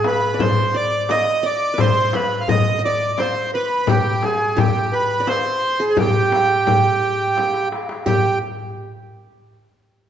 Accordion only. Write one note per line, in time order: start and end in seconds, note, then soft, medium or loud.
0.07 0.42 B4 medium
0.41 0.76 C5 medium
0.76 1.11 D5 medium
1.11 1.46 D#5 loud
1.46 1.81 D5 medium
1.80 2.15 C5 loud
2.15 2.43 B4 medium
2.41 2.48 F5 medium
2.50 2.82 D#5 medium
2.85 3.20 D5 medium
3.19 3.51 C5 medium
3.54 3.90 B4 medium
3.89 4.24 G4 medium
4.24 4.59 G#4 medium
4.59 4.94 G4 medium
4.93 5.29 B4 medium
5.29 5.93 C5 loud
5.90 5.97 G#4 medium
5.99 7.68 G4 medium
8.06 8.39 G4 medium